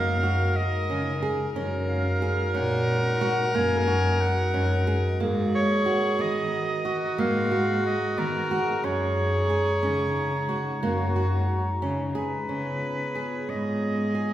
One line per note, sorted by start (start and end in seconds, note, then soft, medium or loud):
0.00 0.75 F#2 medium
0.00 5.16 G#3 medium
0.00 0.13 A#3 medium
0.00 1.52 D#4 medium
0.00 1.52 A#4 medium
0.00 1.55 A#4 loud
0.00 0.58 F5 loud
0.23 0.68 F#4 medium
0.56 1.56 D#5 medium
0.90 1.18 C#3 medium
0.90 1.12 C#4 medium
1.22 1.45 G#4 medium
1.55 2.41 F#2 medium
1.55 2.01 C#4 medium
1.55 5.16 D#4 medium
1.55 6.98 F#4 medium
1.55 5.22 A#4 loud
1.55 3.36 C#5 medium
1.89 2.57 F5 medium
2.22 2.44 G#4 medium
2.54 3.41 A#2 medium
2.54 3.00 C#4 medium
2.54 3.57 F#5 medium
3.21 3.44 F#4 medium
3.38 5.18 D#5 medium
3.55 4.40 F#2 loud
3.55 3.77 A#3 medium
3.55 4.22 G#5 loud
3.87 4.32 F#4 medium
4.21 5.20 F#5 loud
4.53 4.82 F#2 medium
4.53 4.76 C#4 medium
4.87 5.09 G#4 medium
5.19 6.06 G#2 medium
5.19 5.65 A#3 medium
5.19 6.87 G#4 loud
5.19 8.80 A#4 medium
5.19 8.80 D#5 medium
5.55 6.23 C#5 loud
5.86 6.08 F#4 medium
6.19 7.05 D#3 medium
6.19 6.64 B3 medium
6.19 7.21 D#5 loud
6.85 7.08 F#4 medium
6.85 8.86 F#4 loud
7.02 8.83 G#4 medium
7.18 8.05 G#2 loud
7.18 7.41 A#3 medium
7.18 7.85 F5 loud
7.51 7.97 F#4 medium
7.86 8.20 D#5 medium
8.18 8.46 D#3 medium
8.18 8.40 B3 medium
8.18 8.86 A#4 loud
8.51 8.74 F#4 medium
8.84 9.70 F#2 medium
8.84 12.45 G#3 medium
8.84 9.29 C#4 medium
8.84 12.45 D#4 medium
8.84 10.83 G#4 loud
8.84 11.83 C#5 loud
8.84 12.45 A#5 medium
9.50 9.72 G#4 medium
9.83 10.70 C#3 medium
9.83 10.28 C#4 medium
10.49 10.72 F#4 medium
10.83 11.69 F#2 medium
10.83 11.05 A#3 medium
10.83 12.12 F#4 medium
11.16 11.61 F#4 medium
11.82 12.11 C#3 medium
11.82 12.05 C#4 medium
12.15 12.38 G#4 medium
12.15 13.51 B4 medium
12.49 12.78 C#3 medium
12.49 14.33 B3 medium
12.49 12.94 C#4 medium
12.49 14.33 F4 medium
12.49 14.33 G#4 medium
12.49 14.30 C#5 medium
13.15 13.38 G#4 medium
13.49 14.33 G#2 medium
13.49 13.94 C#4 medium
13.49 14.33 D#5 medium
14.15 14.33 G#4 medium